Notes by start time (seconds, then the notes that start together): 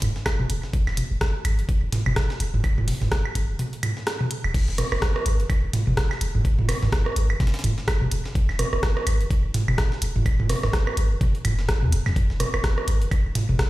0.02 F1, closed hi-hat, mid tom
0.16 snare
0.26 kick, cross-stick, snare, closed hi-hat, high woodblock
0.39 F1, high tom
0.50 F1, closed hi-hat
0.63 snare
0.73 kick, closed hi-hat
0.87 F1, snare, high woodblock
0.97 closed hi-hat, high tom
1.11 F1
1.21 kick, cross-stick, snare, closed hi-hat
1.45 G#1, closed hi-hat, high woodblock
1.59 F1, closed hi-hat
1.69 kick, closed hi-hat
1.82 F1
1.92 snare, closed hi-hat, mid tom
2.06 F1, high tom, high woodblock
2.16 kick, cross-stick, snare, closed hi-hat
2.30 snare
2.40 F1, closed hi-hat
2.54 F1, mid tom
2.64 kick, closed hi-hat, high woodblock
2.78 F1, mid tom
2.88 closed hi-hat, open hi-hat, high tom
3.02 F1, snare, mid tom
3.12 kick, cross-stick, snare, closed hi-hat
3.25 high woodblock
3.35 G#1, kick, closed hi-hat
3.49 F1
3.59 closed hi-hat, high tom
3.73 closed hi-hat
3.83 closed hi-hat, mid tom, high woodblock
3.97 snare
4.07 cross-stick, snare, closed hi-hat
4.21 high tom
4.31 closed hi-hat
4.44 D#1, high woodblock
4.54 kick, closed hi-hat, crash
4.68 F1, snare
4.78 cross-stick, closed hi-hat, high tom
4.92 F1, cross-stick, high woodblock
5.02 kick, cross-stick, snare, closed hi-hat
5.16 cross-stick
5.26 G#1, closed hi-hat
5.40 F1, closed hi-hat
5.50 kick, closed hi-hat, high woodblock
5.63 F1
5.73 snare, closed hi-hat, mid tom
5.87 F1, high tom
5.97 kick, cross-stick, snare, closed hi-hat
6.11 snare, high woodblock
6.21 F1, closed hi-hat
6.35 F1, mid tom
6.45 kick, closed hi-hat
6.59 F1, mid tom
6.69 cross-stick, closed hi-hat, open hi-hat, high tom, high woodblock
6.82 F1, snare, mid tom
6.92 kick, cross-stick, snare, closed hi-hat
7.06 cross-stick
7.16 G#1, closed hi-hat
7.30 F1, high woodblock
7.40 kick, snare, closed hi-hat, high tom
7.47 snare, closed hi-hat
7.54 snare, closed hi-hat
7.59 snare, closed hi-hat
7.64 F1, closed hi-hat, mid tom
7.78 snare
7.88 kick, cross-stick, snare, closed hi-hat, high woodblock
8.01 F1, high tom
8.11 F1, closed hi-hat
8.25 snare
8.35 kick, closed hi-hat
8.49 F1, snare, high woodblock
8.59 cross-stick, closed hi-hat, high tom
8.73 F1, cross-stick
8.83 kick, cross-stick, snare, closed hi-hat
8.97 cross-stick
9.07 G#1, closed hi-hat, high woodblock
9.20 F1, closed hi-hat
9.31 kick, closed hi-hat
9.44 F1
9.54 snare, closed hi-hat, mid tom
9.68 F1, high tom, high woodblock
9.78 kick, cross-stick, snare, closed hi-hat
9.92 snare
10.02 F1, closed hi-hat
10.16 F1, mid tom
10.26 kick, closed hi-hat, high woodblock
10.39 F1, mid tom
10.50 cross-stick, closed hi-hat, open hi-hat, high tom
10.63 F1, cross-stick, snare, mid tom
10.73 kick, cross-stick, snare, closed hi-hat
10.87 cross-stick, high woodblock
10.97 G#1, closed hi-hat
11.11 F1
11.21 kick, closed hi-hat, high tom
11.35 closed hi-hat
11.45 F1, closed hi-hat, mid tom, high woodblock
11.59 snare
11.69 kick, cross-stick, snare, closed hi-hat
11.82 F2, high tom
11.92 D#1, closed hi-hat
12.06 F2, snare, high woodblock
12.16 kick, closed hi-hat
12.30 F1, snare
12.40 cross-stick, closed hi-hat, high tom
12.54 F1, cross-stick, high woodblock
12.64 kick, cross-stick, snare, closed hi-hat
12.78 cross-stick
12.88 G#1, closed hi-hat
13.02 F1, closed hi-hat
13.11 kick, closed hi-hat, high woodblock
13.25 F1
13.35 snare, closed hi-hat, mid tom
13.49 F1, high tom
13.59 kick, cross-stick, snare, closed hi-hat